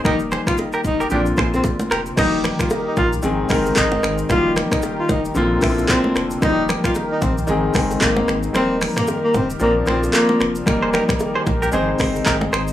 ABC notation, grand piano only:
X:1
M:4/4
L:1/8
Q:"Swing 16ths" 1/4=113
K:Eb
V:1 name="Grand piano"
[E,G,B,G]3 z [D,B,CF] [D,B,CF]2 z | [E,G,B,_G=G]3 z [E,A,CA] [E,A,CB]2 z | [E,G,B,_G=G]3 z [D,B,CF] [D,B,C_F=F]2 z | [E,G,B,FG]3 z [E,A,CA] [E,A,CA]2 z |
[G,B,EB]3 z [F,CDB] [F,CDF]2 z | [G,B,EB]3 z [A,CEc] [A,CEc]2 z |]